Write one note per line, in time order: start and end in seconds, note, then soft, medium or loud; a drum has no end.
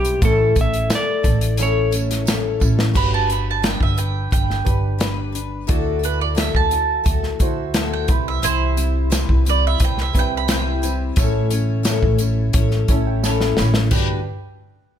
0.00 0.20 B1 medium
0.00 0.22 G3 soft
0.00 0.22 C4 soft
0.00 0.22 E4 soft
0.00 0.20 G4 medium
0.00 0.21 B4 medium
0.05 closed hi-hat medium
0.22 0.54 A1 loud
0.22 0.56 A2 medium
0.22 0.56 E3 medium
0.22 0.56 A3 medium
0.22 1.35 A3 medium
0.22 0.55 C#4 medium
0.22 0.55 E4 medium
0.22 1.35 E4 medium
0.22 0.54 A4 medium
0.22 1.36 A4 medium
0.22 0.58 A4 medium
0.22 kick loud
0.22 closed hi-hat medium
0.22 tambourine soft
0.55 0.88 A1 medium
0.55 0.89 A3 soft
0.55 0.90 C#4 soft
0.55 0.90 E4 medium
0.55 0.90 A4 medium
0.55 kick medium
0.55 closed hi-hat medium
0.55 tambourine medium
0.61 0.90 E5 medium
0.74 closed hi-hat medium
0.90 1.24 A3 medium
0.90 1.24 E4 medium
0.90 1.22 A4 medium
0.90 snare loud
0.90 closed hi-hat medium
0.90 tambourine medium
0.95 1.57 D5 medium
1.23 2.57 A1 medium
1.23 1.58 A3 soft
1.23 1.58 E4 medium
1.23 1.58 A4 medium
1.23 kick medium
1.23 closed hi-hat medium
1.23 tambourine soft
1.41 closed hi-hat medium
1.57 1.92 A2 medium
1.57 1.92 E3 medium
1.57 1.93 A3 medium
1.57 2.71 C#4 medium
1.57 1.91 C#4 medium
1.57 2.72 E4 medium
1.57 1.91 E4 medium
1.57 1.90 A4 medium
1.57 2.72 A4 medium
1.57 closed hi-hat medium
1.57 tambourine medium
1.63 2.59 C#5 medium
1.91 2.24 A3 soft
1.91 2.25 C#4 soft
1.91 2.26 E4 soft
1.91 2.26 A4 medium
1.91 closed hi-hat medium
1.91 tambourine medium
2.11 snare soft
2.11 closed hi-hat medium
2.25 2.60 A3 medium
2.25 2.60 C#4 medium
2.25 2.59 E4 medium
2.25 2.59 A4 medium
2.25 snare loud
2.25 closed hi-hat medium
2.25 tambourine medium
2.60 2.93 A1 loud
2.60 2.93 A3 soft
2.60 2.94 C#4 medium
2.60 2.95 E4 medium
2.60 2.95 A4 medium
2.60 kick medium
2.60 tambourine medium
2.79 snare medium
2.93 3.77 G1 medium
2.93 3.29 G3 medium
2.93 3.28 D4 medium
2.93 4.07 F#4 medium
2.93 3.27 F#4 medium
2.93 4.08 G4 medium
2.93 4.08 B4 medium
2.93 3.26 B4 medium
2.93 3.12 B5 medium
2.93 kick loud
2.93 crash loud
3.14 3.29 A5 medium
3.27 3.62 D4 soft
3.27 3.62 F#4 soft
3.27 3.62 B4 medium
3.27 closed hi-hat medium
3.32 3.47 B5 medium
3.51 3.65 A5 medium
3.62 3.97 G3 medium
3.62 3.98 D4 medium
3.62 3.98 F#4 medium
3.62 3.96 B4 medium
3.62 3.81 G5 medium
3.62 snare loud
3.62 closed hi-hat medium
3.81 4.29 G1 medium
3.81 3.98 E5 medium
3.81 kick medium
3.97 4.31 D4 soft
3.97 4.31 B4 medium
3.97 4.31 G5 medium
3.97 closed hi-hat medium
4.31 4.64 G1 medium
4.31 4.66 G3 medium
4.31 4.66 D4 medium
4.31 4.64 B4 medium
4.31 5.65 G5 medium
4.31 kick loud
4.31 closed hi-hat medium
4.50 snare soft
4.65 5.65 G1 medium
4.65 5.50 D4 medium
4.65 4.99 D4 soft
4.65 5.51 G4 medium
4.65 5.00 B4 medium
4.65 5.51 B4 medium
4.65 kick medium
4.65 closed hi-hat medium
4.98 5.34 G3 medium
4.98 5.34 D4 medium
4.98 5.31 B4 medium
4.98 snare loud
4.98 closed hi-hat medium
5.32 5.68 D4 soft
5.32 5.68 B4 medium
5.32 closed hi-hat medium
5.67 6.51 D2 medium
5.67 6.02 D3 medium
5.67 6.03 A3 medium
5.67 6.82 E4 medium
5.67 6.02 E4 medium
5.67 5.99 F#4 medium
5.67 6.82 F#4 medium
5.67 5.98 A4 medium
5.67 6.82 D5 medium
5.67 kick loud
5.67 closed hi-hat medium
5.99 6.35 E4 soft
5.99 6.35 F#4 soft
5.99 6.35 A4 medium
6.04 6.20 B4 medium
6.04 closed hi-hat medium
6.21 6.37 D5 medium
6.35 6.70 D3 medium
6.35 6.71 A3 medium
6.35 6.71 E4 medium
6.35 6.70 F#4 medium
6.35 6.68 A4 medium
6.35 snare loud
6.35 closed hi-hat medium
6.39 6.54 E5 medium
6.55 7.03 D2 medium
6.55 7.88 A5 medium
6.55 kick medium
6.70 7.03 E4 soft
6.70 7.04 F#4 soft
6.70 7.05 A4 soft
6.70 closed hi-hat medium
7.04 7.38 D2 medium
7.04 7.39 A3 medium
7.04 7.40 E4 medium
7.04 7.40 F#4 medium
7.04 7.38 A4 medium
7.04 kick loud
7.04 closed hi-hat medium
7.23 snare soft
7.39 8.05 D2 medium
7.39 8.08 E4 medium
7.39 7.74 E4 soft
7.39 8.09 F#4 medium
7.39 7.74 F#4 medium
7.39 7.74 A4 medium
7.39 8.10 C5 medium
7.39 kick medium
7.39 closed hi-hat medium
7.74 8.09 D3 medium
7.74 8.09 A3 medium
7.74 8.08 E4 medium
7.74 8.09 F#4 medium
7.74 8.07 A4 medium
7.74 snare loud
7.74 closed hi-hat medium
7.93 8.26 G5 medium
8.07 8.41 C2 loud
8.07 8.42 G3 soft
8.07 9.22 C4 medium
8.07 8.42 C4 soft
8.07 8.42 E4 medium
8.07 9.23 E4 medium
8.07 8.42 B4 medium
8.07 9.23 B5 medium
8.07 kick medium
8.07 closed hi-hat medium
8.28 8.43 E5 medium
8.42 9.25 C2 medium
8.42 8.77 C3 medium
8.42 8.77 E3 medium
8.42 8.77 G3 medium
8.42 8.76 C4 medium
8.42 8.76 E4 medium
8.42 9.08 E4 medium
8.42 9.10 C5 medium
8.42 closed hi-hat loud
8.42 tambourine medium
8.77 9.09 G3 soft
8.77 9.10 C4 medium
8.77 9.11 E4 medium
8.77 closed hi-hat medium
8.77 tambourine medium
9.10 9.45 C3 medium
9.10 9.46 E3 medium
9.10 9.45 G3 medium
9.10 9.46 C4 medium
9.10 9.45 E4 medium
9.10 9.44 B4 medium
9.10 snare loud
9.10 closed hi-hat medium
9.10 tambourine medium
9.29 9.77 C2 medium
9.29 kick medium
9.45 9.77 G3 soft
9.45 9.79 C4 soft
9.45 9.79 E4 soft
9.45 9.80 B4 medium
9.45 closed hi-hat medium
9.45 tambourine medium
9.49 9.64 D5 medium
9.67 9.81 E5 medium
9.78 10.12 C2 medium
9.78 10.14 G3 medium
9.78 10.14 C4 medium
9.78 10.13 E4 medium
9.78 10.12 B4 medium
9.78 kick loud
9.78 closed hi-hat medium
9.84 9.98 G5 medium
9.98 10.16 E5 medium
9.98 snare soft
10.13 11.14 C2 medium
10.13 10.48 G3 soft
10.13 11.00 C4 medium
10.13 10.48 C4 soft
10.13 10.49 E4 soft
10.13 11.00 E4 medium
10.13 10.48 B4 medium
10.13 11.01 B4 medium
10.13 kick medium
10.13 closed hi-hat medium
10.13 tambourine soft
10.19 10.33 G5 medium
10.37 10.51 B5 medium
10.48 10.83 C3 medium
10.48 10.83 E3 medium
10.48 10.83 G3 medium
10.48 10.83 C4 medium
10.48 10.82 E4 medium
10.48 10.81 B4 medium
10.48 12.52 G5 medium
10.48 snare loud
10.48 closed hi-hat medium
10.48 tambourine medium
10.82 11.18 G3 soft
10.82 11.18 C4 medium
10.82 11.17 E4 medium
10.82 11.17 B4 medium
10.82 closed hi-hat medium
10.82 tambourine medium
11.16 11.99 A1 loud
11.16 11.52 A2 medium
11.16 11.52 E3 medium
11.16 11.52 A3 medium
11.16 12.31 C#4 medium
11.16 11.52 C#4 medium
11.16 12.31 E4 medium
11.16 11.51 E4 medium
11.16 12.31 A4 medium
11.16 11.49 C#5 medium
11.16 kick loud
11.16 closed hi-hat medium
11.16 tambourine medium
11.51 11.83 A3 medium
11.51 11.83 C#4 medium
11.51 11.83 E4 medium
11.51 11.84 C#5 medium
11.51 closed hi-hat medium
11.51 tambourine medium
11.83 12.19 A2 medium
11.83 12.19 E3 medium
11.83 12.20 A3 medium
11.83 12.19 C#4 medium
11.83 12.18 E4 medium
11.83 12.18 C#5 medium
11.83 snare loud
11.83 closed hi-hat medium
11.83 tambourine medium
12.03 12.51 A1 medium
12.03 kick medium
12.18 12.52 A3 medium
12.18 12.53 C#4 medium
12.18 12.53 E4 medium
12.18 12.54 C#5 medium
12.18 closed hi-hat medium
12.18 tambourine medium
12.53 12.86 A1 medium
12.53 12.88 A3 medium
12.53 12.89 C#4 medium
12.53 12.89 E4 medium
12.53 12.88 C#5 medium
12.53 kick loud
12.53 closed hi-hat medium
12.53 tambourine soft
12.71 snare soft
12.88 13.53 A1 medium
12.88 13.74 C#4 medium
12.88 13.24 C#4 medium
12.88 13.74 E4 medium
12.88 13.24 E4 medium
12.88 13.75 A4 medium
12.88 13.23 C#5 medium
12.88 13.05 E5 medium
12.88 kick medium
12.88 closed hi-hat medium
12.92 13.24 A3 soft
13.07 13.22 G5 medium
13.23 13.58 A2 medium
13.23 13.58 E3 loud
13.23 13.59 A3 medium
13.23 13.58 C#4 medium
13.23 13.58 E4 loud
13.23 13.57 C#5 loud
13.23 13.55 A5 medium
13.23 snare medium
13.23 tambourine loud
13.41 snare medium
13.57 13.90 A1 loud
13.57 13.91 A3 soft
13.57 13.92 C#4 medium
13.57 13.92 E4 medium
13.57 13.92 C#5 medium
13.57 13.89 B5 medium
13.57 snare medium
13.57 tambourine medium
13.74 snare medium
13.91 14.24 G1 medium
13.91 14.19 G3 medium
13.91 14.19 D4 medium
13.91 14.24 D4 medium
13.91 14.20 F#4 medium
13.91 14.24 G4 medium
13.91 14.24 B4 medium
13.91 14.20 B4 medium
13.91 14.24 G5 medium
13.91 kick loud
13.91 crash medium
13.91 tambourine medium